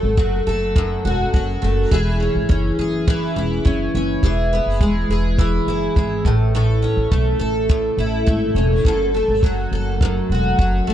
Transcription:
0.00 0.18 G#1 medium
0.00 0.75 F#2 medium
0.00 1.61 A3 medium
0.00 0.46 A4 medium
0.17 0.42 F#1 medium
0.17 1.32 F#3 medium
0.17 kick loud
0.47 0.94 F#1 medium
0.47 1.91 A4 medium
0.76 1.97 F#2 medium
0.76 kick loud
1.05 1.28 E1 medium
1.05 1.97 F#4 medium
1.34 1.57 F#1 medium
1.34 1.91 F#3 medium
1.34 kick medium
1.62 1.86 F#1 medium
1.62 1.97 A3 medium
1.91 2.27 E1 medium
1.91 3.07 E3 medium
1.91 2.78 G#4 medium
1.91 kick loud
2.20 2.48 C#4 medium
2.35 2.47 G#1 medium
2.49 2.73 F#1 medium
2.49 3.63 C#4 medium
2.49 kick loud
2.78 3.26 F#1 medium
2.78 4.24 G#4 medium
3.08 4.23 E3 medium
3.08 kick loud
3.36 3.60 E1 medium
3.36 5.68 E4 medium
3.65 3.89 F#1 medium
3.65 3.94 C#4 medium
3.65 kick medium
3.94 4.18 F#1 medium
3.94 4.29 C#4 medium
4.23 4.58 E1 medium
4.23 5.39 E3 medium
4.23 5.09 G#4 medium
4.23 kick medium
4.53 6.32 B3 medium
4.66 4.80 F#1 medium
4.80 5.04 E1 medium
4.80 5.96 G#3 medium
4.80 kick loud
5.09 5.56 E1 medium
5.09 6.31 G#4 medium
5.38 8.89 E3 medium
5.38 kick loud
5.67 5.91 F#1 medium
5.67 7.98 E4 medium
5.96 6.20 G#1 medium
5.96 6.31 G#3 medium
5.96 kick medium
6.25 6.84 A1 medium
6.25 6.54 A2 medium
6.25 kick medium
6.55 7.68 A2 medium
6.55 7.39 A4 soft
6.82 8.56 C#4 medium
6.97 7.09 A1 medium
7.12 7.36 B1 medium
7.12 8.26 A3 medium
7.12 kick loud
7.39 7.87 A1 medium
7.39 8.86 A4 medium
7.69 8.85 A2 medium
7.69 kick loud
7.97 8.21 A1 medium
7.97 8.91 E4 medium
8.26 8.51 G#1 medium
8.26 9.14 A3 medium
8.26 kick medium
8.55 8.79 E1 medium
8.55 9.14 C#4 medium
8.85 9.21 F#1 medium
8.85 10.01 F#2 medium
8.85 9.71 A4 medium
8.85 kick medium
9.14 10.86 A3 soft
9.28 9.42 G#1 medium
9.42 9.66 F#1 medium
9.42 10.57 F#3 medium
9.42 kick loud
9.71 10.19 F#1 medium
9.71 10.94 A4 medium
10.01 10.94 F#2 medium
10.01 kick loud
10.29 10.53 E1 medium
10.29 10.94 F#4 soft
10.58 10.82 F#1 medium
10.58 10.94 F#3 medium
10.58 kick medium
10.87 10.94 F#1 medium
10.87 10.94 A3 medium

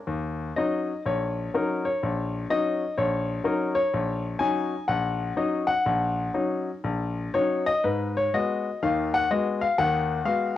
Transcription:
0.07 0.50 D#2 medium
0.56 0.91 F#3 soft
0.56 0.91 C#4 soft
0.56 0.91 D#4 medium
0.56 1.02 D#5 medium
1.06 1.47 A#1 medium
1.06 1.51 C#5 medium
1.54 1.87 F#3 soft
1.54 1.88 C#4 soft
1.54 1.88 D#4 medium
1.54 1.85 A#4 medium
1.85 2.46 C#5 medium
2.03 2.44 A#1 medium
2.50 2.83 F#3 soft
2.50 2.83 C#4 soft
2.50 2.83 D#4 medium
2.50 2.94 D#5 medium
2.98 3.38 A#1 medium
2.98 3.41 C#5 medium
3.44 3.77 F#3 medium
3.44 3.77 C#4 soft
3.44 3.78 D#4 medium
3.44 3.75 A#4 medium
3.75 4.35 C#5 medium
3.93 4.34 A#1 medium
4.39 4.73 F#3 medium
4.39 4.73 C#4 medium
4.39 4.73 D#4 medium
4.39 4.84 G#5 loud
4.88 5.30 A#1 medium
4.88 5.33 F#5 medium
5.36 5.70 F#3 medium
5.36 5.70 C#4 soft
5.36 5.70 D#4 medium
5.36 5.68 D#5 medium
5.67 6.29 F#5 medium
5.86 6.28 A#1 medium
6.34 6.68 F#3 medium
6.34 6.69 C#4 soft
6.34 6.69 D#4 medium
6.84 7.27 A#1 medium
7.34 7.69 F#3 soft
7.34 7.69 C#4 soft
7.34 7.69 D#4 medium
7.34 7.66 C#5 medium
7.66 7.83 D#5 medium
7.84 8.27 G#2 medium
7.84 8.16 B4 medium
8.17 8.33 C#5 medium
8.34 8.68 G#3 soft
8.34 8.68 B3 soft
8.34 8.68 F#4 medium
8.34 9.10 D#5 medium
8.82 9.24 D#2 medium
8.82 9.24 D#3 medium
8.82 9.13 F5 medium
9.14 9.30 F#5 loud
9.31 9.63 G#3 medium
9.31 9.64 B3 soft
9.31 9.64 F#4 medium
9.31 9.61 D#5 medium
9.61 9.77 F5 medium
9.78 10.19 D#2 medium
9.78 10.19 D#3 medium
9.78 10.53 F#5 loud
10.25 10.57 G#3 medium
10.25 10.57 B3 medium
10.25 10.57 F#4 medium
10.25 10.56 F5 medium

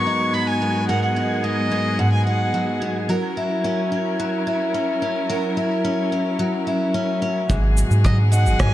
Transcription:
0.00 0.88 G#2 medium
0.00 0.34 F#3 medium
0.00 3.05 G#3 medium
0.00 0.61 B3 medium
0.00 3.05 B3 medium
0.00 3.06 F#4 medium
0.00 0.85 A#4 medium
0.00 0.89 A#4 medium
0.00 0.35 C#6 medium
0.00 7.51 G#6 medium
0.07 1.15 D#4 soft
0.34 1.43 F#3 medium
0.34 0.49 B5 medium
0.47 0.88 G#5 medium
0.62 1.70 B3 medium
0.89 1.98 G#2 medium
0.89 3.07 G#4 medium
0.89 3.09 A#4 medium
0.89 1.02 F#5 medium
1.03 1.45 F#5 medium
1.16 2.25 D#4 medium
1.44 2.54 F#3 medium
1.44 2.01 D#5 medium
1.71 2.80 B3 medium
1.99 3.15 G#2 medium
1.99 2.12 F#5 medium
2.13 2.26 G#5 medium
2.26 3.15 D#4 medium
2.26 2.78 F#5 medium
2.54 3.09 F#3 medium
2.82 3.15 B3 medium
3.09 4.19 F#3 medium
3.09 7.45 F#3 medium
3.09 7.45 C#4 medium
3.09 7.46 E4 medium
3.09 7.45 A#4 medium
3.09 5.30 A#4 medium
3.37 4.46 E4 medium
3.64 3.91 C#4 medium
3.92 4.73 C#4 medium
4.20 5.29 F#3 medium
4.47 5.56 E4 medium
4.74 5.01 C#4 medium
5.02 5.83 C#4 medium
5.30 6.39 F#3 medium
5.30 7.53 A#4 medium
5.57 6.66 E4 medium
5.85 6.11 C#4 medium
6.12 6.93 C#4 medium
6.39 8.04 F#3 medium
6.67 7.55 E4 medium
6.94 7.21 C#4 medium
7.22 7.55 C#4 medium
7.49 7.83 G#1 loud
7.49 8.58 G#2 medium
7.49 8.74 B2 medium
7.49 8.74 F#4 medium
7.49 8.74 G#4 medium
7.49 kick medium
7.49 shaker soft
7.77 shaker medium
7.91 8.47 G#2 loud
7.91 shaker soft
8.04 8.74 F#3 medium
8.04 8.17 D#5 medium
8.04 kick loud
8.04 shaker soft
8.32 8.74 D#4 medium
8.32 8.61 F#5 loud
8.32 shaker medium
8.46 8.55 G#1 medium
8.46 shaker soft
8.59 8.74 G#2 medium
8.59 8.74 G#5 loud
8.59 kick loud
8.59 cross-stick medium
8.59 shaker soft

